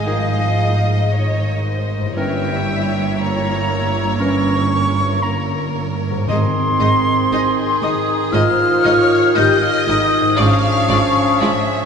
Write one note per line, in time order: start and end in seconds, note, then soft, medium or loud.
0.00 2.13 G#1 medium
0.00 1.69 G#2 medium
0.00 2.13 G#2 medium
0.00 1.74 G#3 soft
0.00 2.13 G#3 medium
0.00 2.13 D#4 medium
0.00 2.12 D#5 medium
0.06 0.47 D#3 medium
0.06 1.12 F3 medium
0.06 0.47 D#4 medium
0.06 0.47 G#4 medium
0.06 1.12 D#5 medium
0.06 1.14 F5 medium
1.11 2.16 D#3 medium
1.11 1.65 C#5 medium
1.11 1.91 D#5 medium
1.64 2.16 C5 medium
1.98 5.88 G2 medium
2.03 5.93 A#3 soft
2.07 5.97 E4 medium
2.11 6.01 C#5 soft
2.16 6.24 G1 medium
2.16 6.24 G2 medium
2.16 2.57 E3 medium
2.16 3.02 G3 medium
2.16 6.24 A#3 medium
2.16 2.57 C#4 medium
2.16 6.24 E4 medium
2.16 2.57 A#4 medium
2.16 6.24 C#5 medium
2.16 3.20 E5 medium
2.16 3.20 G5 loud
3.18 4.19 A#3 medium
3.18 3.71 C#5 medium
3.18 4.21 A#5 loud
3.70 7.32 A#4 medium
4.19 4.61 E3 medium
4.19 5.21 C#4 medium
4.19 4.60 C#4 medium
4.19 4.61 A#4 medium
4.19 5.24 C#6 loud
5.22 5.75 A#3 medium
5.22 5.75 A#5 medium
6.10 10.00 G#2 medium
6.15 10.05 G#3 medium
6.19 10.09 D#4 medium
6.24 7.79 G#2 medium
6.24 6.36 G#3 medium
6.24 7.79 C4 medium
6.24 6.36 D#4 medium
6.24 10.14 D#5 medium
6.24 7.84 C6 loud
6.28 6.36 G#1 medium
6.28 6.36 G#2 medium
6.28 10.35 D#3 medium
6.28 10.35 D#4 medium
6.28 10.35 G#4 medium
6.28 6.36 D#5 medium
6.80 6.88 G#1 medium
6.80 6.88 G#2 medium
6.80 6.88 G#3 medium
6.80 6.89 D#4 medium
6.80 6.88 D#5 medium
7.31 7.40 G#1 medium
7.31 7.39 G#2 medium
7.31 7.40 G#3 medium
7.31 7.40 D#4 medium
7.31 8.32 G#4 medium
7.31 7.41 D#5 medium
7.82 7.91 G#1 medium
7.82 7.90 G#2 medium
7.82 7.91 G#3 medium
7.82 8.34 D#4 loud
7.82 7.91 D#4 medium
7.82 7.91 D#5 medium
7.82 8.33 D#6 loud
8.32 8.42 G#1 medium
8.32 8.40 G#2 medium
8.32 8.41 G#3 medium
8.32 8.42 D#4 medium
8.32 9.36 F4 loud
8.32 8.85 C5 medium
8.32 8.41 D#5 medium
8.32 9.38 F6 loud
8.84 8.93 G#1 medium
8.84 8.92 G#2 medium
8.84 8.93 G#3 medium
8.84 8.93 D#4 medium
8.84 9.36 C#5 loud
8.84 8.92 D#5 medium
9.35 9.45 G#1 medium
9.35 9.44 G#2 medium
9.35 9.44 G#3 medium
9.35 9.44 D#4 medium
9.35 9.62 G4 medium
9.35 9.44 D#5 medium
9.35 10.39 D#5 loud
9.35 9.62 G6 loud
9.61 9.87 F4 loud
9.61 9.86 F6 loud
9.87 9.97 G#1 medium
9.87 9.95 G#2 medium
9.87 9.96 G#3 medium
9.87 10.38 D#4 medium
9.87 9.97 D#4 medium
9.87 9.96 D#5 medium
9.87 10.40 D#6 loud
10.21 11.85 G#2 medium
10.25 11.85 G#3 medium
10.30 11.85 F4 medium
10.35 11.85 C#4 loud
10.35 11.85 D4 medium
10.35 11.85 D5 medium
10.35 10.45 D5 medium
10.35 11.38 F5 loud
10.39 10.47 G#1 medium
10.39 10.47 G#2 medium
10.39 11.85 F3 medium
10.39 10.47 G#3 medium
10.39 10.48 F4 medium
10.39 11.85 G#4 medium
10.39 11.85 C#6 loud
10.89 10.98 G#1 medium
10.89 10.97 G#2 medium
10.89 10.97 G#3 medium
10.89 10.97 F4 medium
10.89 10.97 D5 medium
11.40 11.48 G#1 medium
11.40 11.50 G#2 medium
11.40 11.48 G#3 medium
11.40 11.48 F4 medium
11.40 11.49 D5 medium
11.40 11.85 E5 medium